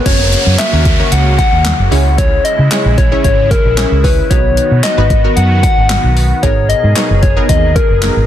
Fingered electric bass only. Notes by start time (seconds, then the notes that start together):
0.06 F#1
0.46 F#2
0.73 D#2
1.12 C#2
1.53 D#2
1.79 F#1
1.92 C#2
2.59 C#3
2.85 A#1
3.24 G#1
3.65 A#1
3.92 C#2
4.31 B1
4.71 B2
4.98 G#1
5.37 F#2
5.77 G#1
6.04 B1
6.43 G#1
6.84 G#2
7.10 F#1
7.49 D#2
7.90 F#1
8.16 G#1